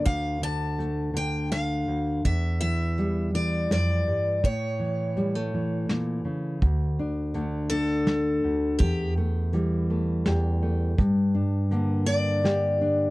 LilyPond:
<<
  \new Staff \with { instrumentName = "Steel-string acoustic guitar" } { \time 3/4 \key d \minor \tempo 4 = 82 f''8 a''4 g''8 f''4 | e''8 e''4 d''8 d''4 | cis''2 r4 | r4. a'4. |
g'8 r2 r8 | r4. d''4. | }
  \new Staff \with { instrumentName = "Nylon-string guitar" } { \clef bass \time 3/4 \key d \minor << { r4 a2 | r4 g2 | r4 g16 a4.~ a16 | r8 d'8 a8 d'4. |
r8 a8 g8 a8 g'8 a8 | r8 d'8 bes8 d'8 g'8 d'8 | } \\ { <d, d>8 d4 d4 d,8 | e,8 e4 e8 f,8 g,8 | a,8 e4 e8 bes,8 cis8 | d,4 d4. d,8 |
e,4 e4 e,4 | g,4 d4 d4 | } >> }
  \new Staff \with { instrumentName = "Upright bass" } { \clef bass \time 3/4 \key d \minor r2. | r2. | r2. | d,8 r2 r8 |
e,8 r2 r8 | g,8 r2 r8 | }
  \new DrumStaff \with { instrumentName = "Drums" } \drummode { \time 3/4 <hh bd>4 hh4 <hh sn>4 | <hh bd>4 hh4 <hh sn>4 | <hh bd>4 hh4 <hh sn>4 | <hh bd>4 hh4 <hh sn>4 |
<hh bd>4 hh4 <hh sn>4 | <hh bd>4 hh4 <hh sn>4 | }
>>